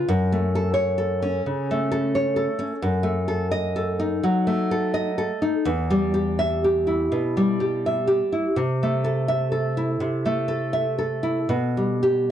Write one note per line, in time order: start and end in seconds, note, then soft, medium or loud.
0.08 1.40 F#2 medium
0.32 1.33 A3 medium
0.55 0.73 A4 medium
0.74 1.77 C#5 medium
0.98 1.90 A4 medium
1.22 2.24 C#4 medium
1.46 2.47 C#3 medium
1.71 2.71 A3 medium
1.91 2.35 A4 medium
2.15 2.83 C#5 medium
2.36 2.82 A4 medium
2.59 2.82 C#4 medium
2.83 4.19 F#2 medium
3.03 3.99 A3 medium
3.28 3.51 A4 medium
3.51 4.59 D#5 medium
3.76 4.70 A4 medium
3.99 5.06 D#4 medium
4.23 5.29 F#3 medium
4.47 5.53 A3 medium
4.71 5.17 A4 medium
4.94 5.65 D#5 medium
5.18 5.65 A4 medium
5.42 5.65 D#4 medium
5.65 7.08 E2 medium
5.90 7.00 G3 medium
6.14 6.63 G4 medium
6.39 7.49 E5 medium
6.65 7.59 G4 medium
6.87 7.97 E4 soft
7.12 8.21 B2 medium
7.37 8.46 G3 medium
7.60 8.06 G4 medium
7.86 8.58 E5 medium
8.08 8.57 G4 medium
8.33 8.57 E4 medium
8.56 9.96 C3 medium
8.83 9.89 A3 medium
9.04 9.50 A4 medium
9.28 10.36 E5 medium
9.52 10.47 A4 medium
9.77 10.86 E4 soft
10.00 11.47 C3 medium
10.25 11.38 A3 medium
10.48 10.97 A4 medium
10.73 11.51 E5 medium
10.99 11.51 A4 soft
11.23 11.50 E4 soft
11.49 12.31 B2 medium
11.77 12.31 G3 soft
12.03 12.31 G4 soft